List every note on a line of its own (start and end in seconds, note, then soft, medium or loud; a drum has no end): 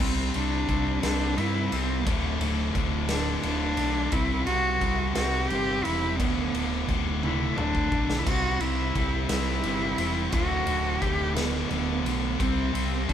0.00 0.29 C2 medium
0.00 0.34 C3 medium
0.00 0.35 G3 loud
0.00 0.38 C4 medium
0.00 0.35 C4 medium
0.00 kick loud
0.34 0.63 C2 medium
0.34 0.67 C3 medium
0.34 0.69 G3 medium
0.34 0.69 C4 medium
0.34 1.04 D4 loud
0.34 ride medium
0.68 0.97 C2 medium
0.68 1.01 C3 medium
0.68 1.02 G3 medium
0.68 1.02 C4 medium
0.68 kick medium
0.68 ride medium
1.03 1.32 C2 medium
1.03 1.36 C3 medium
1.03 1.37 G3 medium
1.03 1.36 C4 medium
1.03 1.40 D4 loud
1.03 snare loud
1.03 ride loud
1.37 1.66 G2 medium
1.37 1.71 C3 medium
1.37 1.72 G3 medium
1.37 1.72 C4 medium
1.37 1.74 E4 medium
1.37 ride medium
1.72 2.01 C2 medium
1.72 2.04 C3 medium
1.72 2.06 G3 loud
1.72 2.07 C4 loud
1.72 2.05 C4 medium
1.72 ride medium
2.05 2.36 D1 medium
2.05 2.39 D2 medium
2.05 2.40 A2 medium
2.05 2.40 D3 medium
2.05 2.83 A3 medium
2.05 kick loud
2.05 ride loud
2.40 2.69 D1 medium
2.40 2.74 D2 medium
2.40 2.74 A2 loud
2.40 2.75 D3 loud
2.40 ride medium
2.75 3.32 D1 medium
2.75 3.08 D2 medium
2.75 3.08 A2 medium
2.75 3.09 D3 medium
2.75 kick medium
2.75 ride medium
3.09 3.43 D2 medium
3.09 3.43 A2 medium
3.09 3.44 D3 medium
3.09 3.42 D4 loud
3.09 snare loud
3.09 ride loud
3.43 3.72 D1 medium
3.43 3.76 D2 medium
3.43 3.77 A2 medium
3.43 3.78 D3 loud
3.43 4.14 D4 loud
3.43 ride medium
3.77 4.06 B1 medium
3.77 4.10 D2 medium
3.77 4.11 A2 medium
3.77 4.11 D3 medium
3.77 ride medium
4.12 4.41 C2 medium
4.12 4.46 C3 loud
4.12 4.47 G3 medium
4.12 4.47 C4 loud
4.12 4.45 E4 loud
4.12 kick loud
4.12 ride loud
4.46 4.76 C2 medium
4.46 4.80 C3 loud
4.46 4.82 G3 loud
4.46 4.81 C4 loud
4.46 5.11 F#4 loud
4.46 ride medium
4.81 5.10 C2 medium
4.81 5.15 C3 medium
4.81 5.17 G3 medium
4.81 5.16 C4 medium
4.81 kick medium
4.81 ride medium
5.15 5.44 C2 loud
5.15 5.51 C3 medium
5.15 5.52 G3 loud
5.15 5.52 C4 medium
5.15 5.50 F#4 loud
5.15 snare loud
5.15 ride loud
5.49 5.79 G1 medium
5.49 5.84 C3 medium
5.49 5.85 G3 medium
5.49 5.85 G4 loud
5.49 ride medium
5.53 5.85 C4 loud
5.84 6.20 E1 medium
5.84 6.17 C3 medium
5.84 6.20 G3 loud
5.84 6.18 C4 loud
5.84 6.19 E4 loud
5.84 ride medium
6.18 6.48 D1 medium
6.18 6.53 D2 loud
6.18 6.54 A2 medium
6.18 6.54 D3 loud
6.18 6.96 B3 loud
6.18 kick loud
6.18 ride loud
6.53 6.82 D1 medium
6.53 6.88 D2 medium
6.53 6.88 A2 loud
6.53 6.89 D3 loud
6.53 ride medium
6.88 7.46 D1 medium
6.88 7.22 D2 medium
6.88 7.23 A2 medium
6.88 7.23 D3 medium
6.88 kick medium
6.88 ride medium
7.22 7.56 D2 medium
7.22 7.57 A2 medium
7.22 7.57 D3 medium
7.22 7.58 E4 medium
7.22 high tom medium
7.57 7.86 D1 medium
7.57 7.91 D2 medium
7.57 7.91 A2 medium
7.57 7.92 D3 medium
7.57 8.20 D4 loud
7.57 mid tom medium
7.75 kick medium
7.92 8.21 B1 medium
7.92 8.24 D2 medium
7.92 8.24 A2 medium
7.92 8.25 D3 medium
7.92 kick loud
8.10 snare medium
8.19 8.29 E4 medium
8.26 8.55 C2 medium
8.26 8.61 C3 medium
8.26 8.62 G3 medium
8.26 8.62 C4 loud
8.26 8.63 F#4 loud
8.26 kick loud
8.26 ride loud
8.26 crash loud
8.60 8.89 C2 medium
8.60 8.94 C3 medium
8.60 8.96 G3 loud
8.60 8.95 C4 loud
8.60 9.29 E4 loud
8.60 ride medium
8.95 9.24 C2 medium
8.95 9.30 C3 medium
8.95 9.31 G3 medium
8.95 9.31 C4 medium
8.95 kick medium
8.95 ride medium
9.29 9.58 C2 medium
9.29 9.63 C3 medium
9.29 9.64 G3 medium
9.29 9.64 C4 medium
9.29 10.29 E4 loud
9.29 snare loud
9.29 ride loud
9.63 9.93 G1 medium
9.63 9.98 C3 medium
9.63 9.99 G3 medium
9.63 9.99 C4 loud
9.63 ride medium
9.98 10.27 E1 medium
9.98 10.31 C3 medium
9.98 10.32 G3 medium
9.98 10.32 C4 medium
9.98 ride medium
10.32 10.62 D1 medium
10.32 10.65 D2 medium
10.32 10.66 A2 loud
10.32 10.66 D3 medium
10.32 11.03 F#4 loud
10.32 kick loud
10.32 ride loud
10.66 10.96 D1 medium
10.66 11.00 D2 medium
10.66 11.01 A2 medium
10.66 11.01 D3 loud
10.66 ride medium
11.01 11.60 D1 medium
11.01 11.34 D2 medium
11.01 11.34 A2 medium
11.01 11.34 D3 medium
11.01 11.38 G4 loud
11.01 kick medium
11.01 ride medium
11.35 11.68 D2 medium
11.35 11.69 A2 medium
11.35 11.69 D3 medium
11.35 11.71 B3 medium
11.35 snare loud
11.35 ride loud
11.70 12.00 D1 medium
11.70 12.02 D2 medium
11.70 12.03 A2 medium
11.70 12.03 D3 loud
11.70 12.43 B3 medium
11.70 ride medium
12.03 12.34 B1 loud
12.03 12.37 D2 medium
12.03 12.37 A2 medium
12.03 12.38 D3 medium
12.03 ride medium
12.38 12.69 C2 medium
12.38 12.72 C3 medium
12.38 12.73 G3 loud
12.38 12.73 C4 loud
12.38 13.10 C4 loud
12.38 kick loud
12.38 ride medium
12.73 13.04 C2 medium
12.73 13.08 C3 loud
12.73 13.10 G3 loud
12.73 13.09 C4 loud
12.73 ride medium
13.09 13.13 C2 loud
13.09 13.13 C3 medium
13.09 13.13 G3 medium
13.09 13.13 C4 loud
13.09 13.13 D4 medium
13.09 kick medium
13.09 ride medium